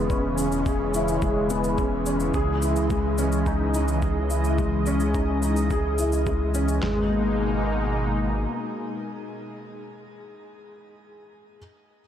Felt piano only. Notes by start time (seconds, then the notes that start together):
Already playing: G#3 B3 C#4 E4 G#4
0.10 C#4
0.38 C#4
0.66 G#4
0.94 E4
1.22 G#3
1.50 B3
1.78 C#4
2.06 C#4
2.34 G#4
2.62 E4
2.90 G#3
3.18 C#4
3.47 D#4
3.74 D#4
4.02 G#4
4.31 E4
4.59 G#3
4.87 C#4
5.15 D#4
5.43 D#4
5.71 G#4
5.99 E4
6.27 G#3
6.54 C#4
6.82 G#3